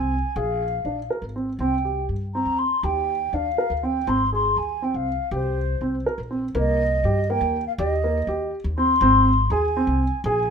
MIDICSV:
0, 0, Header, 1, 4, 480
1, 0, Start_track
1, 0, Key_signature, -3, "minor"
1, 0, Tempo, 494641
1, 344, Time_signature, 5, 3, 24, 8
1, 10191, End_track
2, 0, Start_track
2, 0, Title_t, "Flute"
2, 0, Program_c, 0, 73
2, 0, Note_on_c, 0, 80, 70
2, 349, Note_on_c, 0, 77, 69
2, 364, Note_off_c, 0, 80, 0
2, 1069, Note_off_c, 0, 77, 0
2, 1546, Note_on_c, 0, 79, 70
2, 1995, Note_off_c, 0, 79, 0
2, 2267, Note_on_c, 0, 82, 70
2, 2502, Note_on_c, 0, 84, 73
2, 2517, Note_off_c, 0, 82, 0
2, 2750, Note_on_c, 0, 79, 71
2, 2764, Note_off_c, 0, 84, 0
2, 3236, Note_on_c, 0, 77, 74
2, 3251, Note_off_c, 0, 79, 0
2, 3720, Note_on_c, 0, 79, 70
2, 3735, Note_off_c, 0, 77, 0
2, 3962, Note_on_c, 0, 84, 82
2, 3977, Note_off_c, 0, 79, 0
2, 4198, Note_off_c, 0, 84, 0
2, 4202, Note_on_c, 0, 84, 76
2, 4438, Note_on_c, 0, 80, 69
2, 4453, Note_off_c, 0, 84, 0
2, 4689, Note_on_c, 0, 79, 65
2, 4704, Note_off_c, 0, 80, 0
2, 4804, Note_on_c, 0, 77, 66
2, 4819, Note_off_c, 0, 79, 0
2, 5159, Note_off_c, 0, 77, 0
2, 5177, Note_on_c, 0, 72, 58
2, 5846, Note_off_c, 0, 72, 0
2, 6383, Note_on_c, 0, 75, 77
2, 7079, Note_on_c, 0, 79, 90
2, 7093, Note_off_c, 0, 75, 0
2, 7429, Note_off_c, 0, 79, 0
2, 7435, Note_on_c, 0, 77, 78
2, 7488, Note_off_c, 0, 77, 0
2, 7551, Note_on_c, 0, 75, 70
2, 8230, Note_off_c, 0, 75, 0
2, 8508, Note_on_c, 0, 84, 83
2, 9224, Note_on_c, 0, 80, 83
2, 9238, Note_off_c, 0, 84, 0
2, 9929, Note_off_c, 0, 80, 0
2, 9935, Note_on_c, 0, 80, 83
2, 10191, Note_off_c, 0, 80, 0
2, 10191, End_track
3, 0, Start_track
3, 0, Title_t, "Grand piano"
3, 0, Program_c, 1, 0
3, 0, Note_on_c, 1, 60, 59
3, 121, Note_off_c, 1, 60, 0
3, 354, Note_on_c, 1, 68, 63
3, 601, Note_off_c, 1, 68, 0
3, 831, Note_on_c, 1, 62, 58
3, 954, Note_off_c, 1, 62, 0
3, 1072, Note_on_c, 1, 70, 55
3, 1196, Note_off_c, 1, 70, 0
3, 1317, Note_on_c, 1, 60, 52
3, 1440, Note_off_c, 1, 60, 0
3, 1557, Note_on_c, 1, 60, 65
3, 1680, Note_off_c, 1, 60, 0
3, 1795, Note_on_c, 1, 67, 53
3, 2043, Note_off_c, 1, 67, 0
3, 2279, Note_on_c, 1, 60, 56
3, 2527, Note_off_c, 1, 60, 0
3, 2754, Note_on_c, 1, 67, 66
3, 3003, Note_off_c, 1, 67, 0
3, 3240, Note_on_c, 1, 62, 59
3, 3363, Note_off_c, 1, 62, 0
3, 3476, Note_on_c, 1, 70, 64
3, 3600, Note_off_c, 1, 70, 0
3, 3719, Note_on_c, 1, 60, 57
3, 3842, Note_off_c, 1, 60, 0
3, 3954, Note_on_c, 1, 60, 72
3, 4078, Note_off_c, 1, 60, 0
3, 4197, Note_on_c, 1, 68, 54
3, 4446, Note_off_c, 1, 68, 0
3, 4680, Note_on_c, 1, 60, 62
3, 4928, Note_off_c, 1, 60, 0
3, 5159, Note_on_c, 1, 67, 67
3, 5407, Note_off_c, 1, 67, 0
3, 5643, Note_on_c, 1, 60, 56
3, 5765, Note_off_c, 1, 60, 0
3, 5885, Note_on_c, 1, 70, 62
3, 6006, Note_off_c, 1, 70, 0
3, 6120, Note_on_c, 1, 60, 52
3, 6242, Note_off_c, 1, 60, 0
3, 6359, Note_on_c, 1, 58, 72
3, 6606, Note_off_c, 1, 58, 0
3, 6841, Note_on_c, 1, 67, 68
3, 6963, Note_off_c, 1, 67, 0
3, 7083, Note_on_c, 1, 58, 68
3, 7329, Note_off_c, 1, 58, 0
3, 7561, Note_on_c, 1, 67, 76
3, 7683, Note_off_c, 1, 67, 0
3, 7802, Note_on_c, 1, 58, 65
3, 7923, Note_off_c, 1, 58, 0
3, 8040, Note_on_c, 1, 67, 63
3, 8286, Note_off_c, 1, 67, 0
3, 8517, Note_on_c, 1, 60, 66
3, 8639, Note_off_c, 1, 60, 0
3, 8753, Note_on_c, 1, 60, 78
3, 9001, Note_off_c, 1, 60, 0
3, 9234, Note_on_c, 1, 68, 70
3, 9356, Note_off_c, 1, 68, 0
3, 9478, Note_on_c, 1, 60, 67
3, 9723, Note_off_c, 1, 60, 0
3, 9953, Note_on_c, 1, 68, 77
3, 10075, Note_off_c, 1, 68, 0
3, 10191, End_track
4, 0, Start_track
4, 0, Title_t, "Upright bass"
4, 0, Program_c, 2, 32
4, 0, Note_on_c, 2, 36, 65
4, 205, Note_off_c, 2, 36, 0
4, 347, Note_on_c, 2, 34, 83
4, 789, Note_off_c, 2, 34, 0
4, 822, Note_on_c, 2, 34, 60
4, 1042, Note_off_c, 2, 34, 0
4, 1181, Note_on_c, 2, 32, 59
4, 1511, Note_off_c, 2, 32, 0
4, 1539, Note_on_c, 2, 36, 70
4, 1986, Note_off_c, 2, 36, 0
4, 2027, Note_on_c, 2, 43, 60
4, 2355, Note_off_c, 2, 43, 0
4, 2381, Note_on_c, 2, 39, 59
4, 2603, Note_off_c, 2, 39, 0
4, 2748, Note_on_c, 2, 39, 84
4, 3192, Note_off_c, 2, 39, 0
4, 3229, Note_on_c, 2, 39, 65
4, 3448, Note_off_c, 2, 39, 0
4, 3590, Note_on_c, 2, 38, 61
4, 3917, Note_off_c, 2, 38, 0
4, 3950, Note_on_c, 2, 32, 76
4, 4393, Note_off_c, 2, 32, 0
4, 4430, Note_on_c, 2, 39, 63
4, 4757, Note_off_c, 2, 39, 0
4, 4796, Note_on_c, 2, 36, 63
4, 5013, Note_off_c, 2, 36, 0
4, 5156, Note_on_c, 2, 36, 83
4, 5596, Note_off_c, 2, 36, 0
4, 5635, Note_on_c, 2, 36, 57
4, 5852, Note_off_c, 2, 36, 0
4, 5996, Note_on_c, 2, 34, 64
4, 6320, Note_off_c, 2, 34, 0
4, 6352, Note_on_c, 2, 36, 83
4, 6793, Note_off_c, 2, 36, 0
4, 6830, Note_on_c, 2, 43, 67
4, 7156, Note_off_c, 2, 43, 0
4, 7188, Note_on_c, 2, 39, 75
4, 7407, Note_off_c, 2, 39, 0
4, 7554, Note_on_c, 2, 39, 96
4, 7993, Note_off_c, 2, 39, 0
4, 8026, Note_on_c, 2, 39, 72
4, 8245, Note_off_c, 2, 39, 0
4, 8387, Note_on_c, 2, 39, 80
4, 8713, Note_off_c, 2, 39, 0
4, 8742, Note_on_c, 2, 32, 92
4, 9185, Note_off_c, 2, 32, 0
4, 9220, Note_on_c, 2, 39, 73
4, 9548, Note_off_c, 2, 39, 0
4, 9577, Note_on_c, 2, 36, 77
4, 9798, Note_off_c, 2, 36, 0
4, 9936, Note_on_c, 2, 34, 96
4, 10191, Note_off_c, 2, 34, 0
4, 10191, End_track
0, 0, End_of_file